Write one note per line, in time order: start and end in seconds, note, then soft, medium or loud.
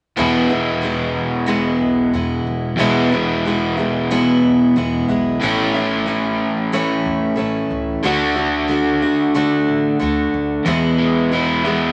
0.17 0.50 E2 medium
0.17 1.16 E2 medium
0.17 0.50 B2 medium
0.17 0.50 E3 medium
0.17 0.49 G#3 medium
0.17 0.48 B3 medium
0.17 0.48 E4 medium
0.49 0.81 E3 soft
0.49 0.82 G#3 soft
0.49 0.82 B3 medium
0.49 0.82 E4 medium
0.82 1.47 E3 medium
0.82 1.47 G#3 medium
0.82 1.46 B3 medium
0.82 1.48 E4 medium
1.46 2.13 E2 medium
1.46 2.13 B2 medium
1.46 2.13 E3 medium
1.46 2.13 G#3 medium
1.46 2.13 B3 medium
1.46 2.15 E4 medium
1.81 2.06 B1 medium
2.13 2.38 E2 medium
2.13 2.78 E3 medium
2.13 2.78 G#3 medium
2.13 2.78 B3 medium
2.13 2.80 E4 medium
2.47 2.71 E2 medium
2.78 3.12 E2 medium
2.78 3.77 E2 medium
2.78 3.12 B2 medium
2.78 3.12 E3 medium
2.78 3.12 G#3 medium
2.78 3.11 B3 medium
2.78 3.10 E4 medium
3.11 3.44 E3 soft
3.11 3.45 G#3 soft
3.11 3.45 B3 medium
3.11 3.45 E4 medium
3.45 3.78 E3 soft
3.45 3.78 G#3 medium
3.45 3.78 B3 medium
3.45 3.76 E4 medium
3.77 4.10 E3 soft
3.77 4.10 G#3 soft
3.77 4.10 B3 soft
3.77 4.10 E4 soft
4.11 4.76 E2 medium
4.11 4.76 B2 medium
4.11 4.75 E3 medium
4.11 4.75 G#3 medium
4.11 4.76 B3 medium
4.11 4.77 E4 medium
4.43 4.68 B1 medium
4.76 5.01 E2 loud
4.76 5.09 E3 medium
4.76 5.09 G#3 medium
4.76 5.08 B3 medium
4.76 5.07 E4 medium
5.08 5.33 B1 medium
5.08 5.40 E3 soft
5.08 5.42 G#3 soft
5.08 5.42 B3 medium
5.08 5.41 E4 soft
5.41 6.40 A1 medium
5.41 5.74 A2 medium
5.41 5.74 E3 medium
5.41 5.75 A3 medium
5.41 5.74 C#4 medium
5.41 5.73 E4 medium
5.74 6.06 A3 soft
5.74 6.07 C#4 medium
5.74 6.07 E4 soft
6.06 6.72 E3 medium
6.06 6.73 A3 medium
6.06 6.73 C#4 medium
6.06 6.73 E4 medium
6.72 7.38 A2 medium
6.72 7.34 E3 medium
6.72 7.36 A3 medium
6.72 7.36 C#4 medium
6.72 7.38 E4 medium
7.06 7.30 E2 medium
7.36 7.63 A1 loud
7.36 8.02 E3 medium
7.36 8.03 A3 medium
7.36 8.03 C#4 medium
7.36 8.04 E4 medium
7.71 7.95 C#2 medium
8.03 9.02 D2 medium
8.03 8.36 D3 medium
8.03 8.36 A3 medium
8.03 8.35 D4 medium
8.03 8.34 F#4 medium
8.36 8.68 A3 soft
8.36 8.69 D4 medium
8.36 8.69 F#4 medium
8.68 9.01 D3 medium
8.68 9.02 A3 medium
8.68 9.02 D4 medium
8.68 9.01 F#4 medium
9.02 9.34 A3 soft
9.02 9.35 D4 soft
9.02 9.35 F#4 medium
9.35 9.98 D3 medium
9.35 9.99 A3 medium
9.35 10.00 D4 medium
9.35 10.01 F#4 medium
9.68 9.93 A1 medium
9.99 10.25 D2 loud
9.99 10.65 D3 medium
9.99 10.66 A3 medium
9.99 10.66 D4 medium
9.99 10.67 F#4 medium
10.34 10.58 D2 medium
10.66 11.31 E2 medium
10.66 11.64 E2 medium
10.66 11.31 B2 medium
10.66 11.31 E3 medium
10.66 11.31 G#3 medium
10.66 11.32 B3 medium
10.66 11.33 E4 medium
10.98 11.92 G#3 medium
11.32 11.64 E3 medium
11.32 11.64 G#3 medium
11.32 11.64 B3 medium
11.32 11.63 E4 medium
11.64 11.92 E3 soft
11.64 11.92 G#3 soft
11.64 11.92 B3 medium
11.64 11.92 E4 soft